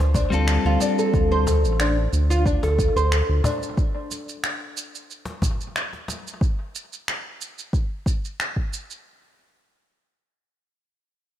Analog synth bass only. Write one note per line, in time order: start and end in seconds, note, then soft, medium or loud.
0.00 0.26 D2 medium
0.32 0.58 D2 loud
0.65 0.77 D2 medium
1.13 1.65 D2 medium
1.64 2.08 A1 medium
2.13 2.58 D2 medium
2.63 2.89 D2 medium
2.96 3.22 D2 medium
3.29 3.41 D2 medium